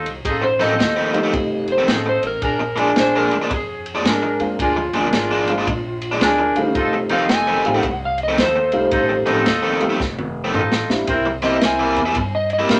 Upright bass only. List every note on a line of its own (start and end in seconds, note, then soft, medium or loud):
0.06 0.24 C2 medium
0.25 0.58 A1 medium
0.60 0.79 A1 loud
0.80 1.32 D#2 medium
1.33 1.86 F1 loud
1.88 2.21 A1 loud
2.22 2.41 A1 medium
2.42 2.94 A#1 medium
2.96 3.29 A#1 loud
3.31 3.50 D2 medium
3.50 4.03 F2 loud
4.04 4.38 G#2 medium
4.40 4.58 F2 medium
4.59 4.92 D2 medium
4.93 5.12 D2 medium
5.13 5.65 G#1 medium
5.67 6.19 A#1 loud
6.21 6.54 D2 medium
6.56 6.75 D2 medium
6.75 7.27 F1 medium
7.30 7.63 F1 medium
7.65 7.83 A1 medium
7.83 8.36 C2 loud
8.38 8.71 D#2 medium
8.74 8.91 C2 medium
8.92 9.25 A1 medium
9.28 9.46 A1 loud
9.46 9.98 D#2 medium
9.99 10.52 F1 loud
10.55 10.88 A1 medium
10.89 11.07 A1 medium
11.08 11.60 C2 medium
11.62 11.96 C2 medium
11.97 12.15 E2 medium
12.16 12.68 G2 medium
12.70 12.80 A#2 medium